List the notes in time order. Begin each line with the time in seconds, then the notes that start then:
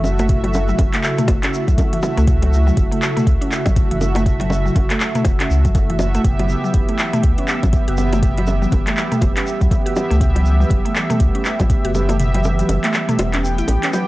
Already playing: F#1 C#3 A3 E4 F#4
0.04 A3 F#4 E5, low bongo, shaker
0.19 A3, closed hi-hat, high bongo, shaker
0.28 A3 E5, kick, closed hi-hat, mid tom, shaker
0.44 F#3, closed hi-hat, high bongo
0.54 low bongo, shaker
0.68 F#3, shaker
0.78 F#1, kick, closed hi-hat, low bongo, shaker
0.94 A3, clap, closed hi-hat
1.03 clap, shaker
1.18 A3, closed hi-hat, mid tom, shaker
1.28 F#1, kick, closed hi-hat, high bongo, low bongo, shaker
1.43 C#4, clap, closed hi-hat
1.54 shaker
1.68 C#2 F#3, kick, closed hi-hat, shaker
1.78 kick, closed hi-hat, low bongo, shaker
1.93 E3, closed hi-hat
2.03 A3 F#4 E5, high bongo, low bongo, shaker
2.17 C#2 A3, closed hi-hat, shaker
2.27 A3 F#4 E5, kick, closed hi-hat, mid tom, shaker
2.42 F#3, closed hi-hat, high bongo
2.53 shaker
2.67 F#3, shaker
2.77 F#1, kick, closed hi-hat, shaker
2.91 A3, closed hi-hat
3.02 clap, shaker
3.17 A3, closed hi-hat, mid tom, shaker
3.27 C#2, kick, closed hi-hat, shaker
3.41 C#4, closed hi-hat
3.52 clap, shaker
3.66 A1 F#3, kick, closed hi-hat, high bongo, low bongo, shaker
3.76 kick, closed hi-hat, shaker
3.91 F#1 E3, closed hi-hat
4.01 A3 F#4 E5, low bongo, shaker
4.15 A3, closed hi-hat, high bongo, shaker
4.26 A3 F#4 E5, kick, closed hi-hat, mid tom, shaker
4.40 F#3, closed hi-hat, high bongo
4.50 low bongo, shaker
4.66 F#3, shaker
4.75 F#1, kick, closed hi-hat, low bongo, shaker
4.90 A3, clap, closed hi-hat
5.00 clap, shaker
5.15 A3, closed hi-hat, mid tom, shaker
5.25 E1, kick, closed hi-hat, high bongo, low bongo, shaker
5.40 C#4, clap, closed hi-hat
5.50 C#2, shaker
5.65 F#1 F#3, kick, closed hi-hat, shaker
5.75 kick, closed hi-hat, low bongo, shaker
5.90 E3, closed hi-hat
5.99 A3 F#4 E5, high bongo, low bongo, shaker
6.15 A3, closed hi-hat, shaker
6.24 F#1 E3 G3 B3 G4, kick, closed hi-hat, mid tom, shaker
6.39 F#3, closed hi-hat, high bongo
6.49 shaker
6.64 F#3, shaker
6.74 F#1, kick, closed hi-hat, shaker
6.89 A3, closed hi-hat
6.99 clap, shaker
7.13 A3, closed hi-hat, mid tom, shaker
7.23 C#2, kick, closed hi-hat, shaker
7.38 C#4, closed hi-hat
7.48 clap, shaker
7.63 A1 F#3, kick, closed hi-hat, high bongo, low bongo, shaker
7.73 kick, closed hi-hat, shaker
7.88 F#1 F#4, closed hi-hat
7.97 B3 G4 E5, low bongo, shaker
8.13 A3, closed hi-hat, high bongo, shaker
8.22 B3 G4 E5, kick, closed hi-hat, mid tom, shaker
8.37 F#3, closed hi-hat, high bongo
8.47 low bongo, shaker
8.62 F#3, shaker
8.72 F#1, kick, closed hi-hat, low bongo, shaker
8.87 A3, clap, closed hi-hat
8.97 clap, shaker
9.12 A3, closed hi-hat, mid tom, shaker
9.21 F#1, kick, closed hi-hat, high bongo, low bongo, shaker
9.37 C#4, clap, closed hi-hat
9.47 shaker
9.61 C#2 F#3, kick, closed hi-hat, shaker
9.71 kick, closed hi-hat, low bongo, shaker
9.86 F#4, closed hi-hat
9.96 B3 G4 E5, high bongo, low bongo, shaker
10.10 C#2 A3, closed hi-hat, shaker
10.20 A3 B3 G4 E5, kick, closed hi-hat, mid tom, shaker
10.35 F#3, closed hi-hat, high bongo
10.46 shaker
10.60 F#3, shaker
10.70 F#1, kick, closed hi-hat, shaker
10.85 A3, closed hi-hat
10.96 clap, shaker
11.10 A3, closed hi-hat, mid tom, shaker
11.20 C#2, kick, closed hi-hat, shaker
11.35 C#4, closed hi-hat
11.45 clap, shaker
11.60 A1 F#3, kick, closed hi-hat, high bongo, low bongo, shaker
11.70 kick, closed hi-hat, shaker
11.84 F#1 F#4, closed hi-hat
11.94 B3 G4 E5, low bongo, shaker
12.09 A3, closed hi-hat, high bongo, shaker
12.19 B3 G4 E5, closed hi-hat, mid tom, shaker
12.34 F#3, closed hi-hat, high bongo
12.44 low bongo, shaker
12.59 F#3, closed hi-hat, shaker
12.69 F#1, closed hi-hat, low bongo, shaker
12.84 A3, clap, closed hi-hat
12.94 clap, shaker
13.09 A3, closed hi-hat, mid tom, shaker
13.18 E1, closed hi-hat, high bongo, low bongo, shaker
13.34 C#4, clap, closed hi-hat
13.43 B3 G4 G5, shaker
13.58 E4, closed hi-hat, shaker
13.68 A1, closed hi-hat, low bongo, shaker
13.83 C#4, clap, closed hi-hat
13.93 F#3 B3 G4 G5, high bongo, low bongo, shaker